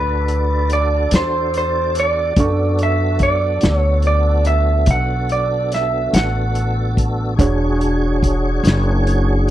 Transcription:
Already playing: upright bass D2, tonewheel organ D4 F#4 A4 D5, grand piano D4 A4 D5, clean electric guitar B4
0.28 closed hi-hat
0.70 clean electric guitar D5, closed hi-hat
1.11 upright bass E2, snare, closed hi-hat
1.16 clean electric guitar C5
1.54 clean electric guitar C5, closed hi-hat
1.95 closed hi-hat
2.00 clean electric guitar D5
2.36 upright bass F#2, tonewheel organ B3 D4 F#4 A4, grand piano D4 A4 C#6, kick, closed hi-hat
2.79 closed hi-hat
2.83 clean electric guitar E5
3.19 clean electric guitar D5, kick, closed hi-hat
3.61 upright bass D2, snare, closed hi-hat
3.77 clean electric guitar C#5
4.02 closed hi-hat
4.07 clean electric guitar D5
4.45 clean electric guitar E5, closed hi-hat
4.86 upright bass B1, kick, closed hi-hat
4.91 clean electric guitar F#5
5.29 clean electric guitar D5, closed hi-hat
5.72 clean electric guitar E5, snare, closed hi-hat
6.13 upright bass A1, clean electric guitar F#5, snare, closed hi-hat
6.55 closed hi-hat
6.97 kick, closed hi-hat
7.35 upright bass E1, tonewheel organ D4 F#4 G#4 C#5, grand piano D4 F#4, kick
7.39 grand piano G#4 C#5, closed hi-hat
7.81 closed hi-hat
8.23 kick, closed hi-hat
8.64 upright bass F#1, snare, closed hi-hat
9.07 closed hi-hat

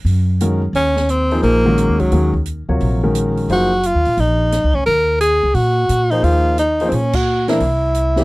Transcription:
0.05 upright bass F#2, open hi-hat
0.40 grand piano D#3 G#3 C#4 F#4 A#4, closed hi-hat
0.73 upright bass D#2, tenor saxophone C#4, open hi-hat
0.96 snare
1.09 tenor saxophone C4, closed hi-hat
1.31 grand piano F3 A#3 D#4 G#4 C5, open hi-hat
1.43 upright bass A#1, tenor saxophone A#3, open hi-hat
1.66 grand piano D#3 G#3 C#4 F#4 A#4
1.78 closed hi-hat
1.88 upright bass D#2
2.00 upright bass C#2, tenor saxophone F#3, open hi-hat
2.12 upright bass D#2, grand piano D#3 G#3 C#4 F#4 A#4, open hi-hat
2.34 kick
2.46 closed hi-hat
2.69 upright bass D2, grand piano C3 F#3 F4 A#4 C#5
2.80 upright bass A#1, open hi-hat
3.03 grand piano D#3 G#3 C#4 F#4 A#4
3.15 closed hi-hat
3.37 open hi-hat
3.49 upright bass F#1, grand piano F3 A#3 D#4 G#4 C5, tenor saxophone F#4, open hi-hat
3.83 tenor saxophone F4, closed hi-hat
3.95 upright bass D#2
4.05 upright bass A#2, open hi-hat
4.17 upright bass A#1, tenor saxophone D#4, open hi-hat
4.52 snare, closed hi-hat
4.64 upright bass C#2
4.74 upright bass D2, tenor saxophone C#4, kick
4.86 upright bass D#2, tenor saxophone A#4, open hi-hat
5.21 tenor saxophone G#4, closed hi-hat
5.43 upright bass C#2
5.54 upright bass A#2, tenor saxophone F#4, open hi-hat
5.89 upright bass A#2, closed hi-hat
6.11 grand piano F3 A#3 D#4 G#4 C5, tenor saxophone D#4, open hi-hat
6.23 upright bass D#2, tenor saxophone F4, open hi-hat
6.58 tenor saxophone D#4, closed hi-hat
6.80 grand piano F3 A#3 D#4 G#4 C5, open hi-hat
6.89 upright bass A#2, tenor saxophone C4, open hi-hat
6.94 tenor saxophone C#4
7.13 tenor saxophone F#4, kick, crash
7.48 grand piano E3 A#3 C4 D4 A#4, tenor saxophone E4, snare, open hi-hat
7.60 upright bass C2, open hi-hat
7.95 closed hi-hat
8.16 grand piano E3 A#3 C4 D4 G4, snare

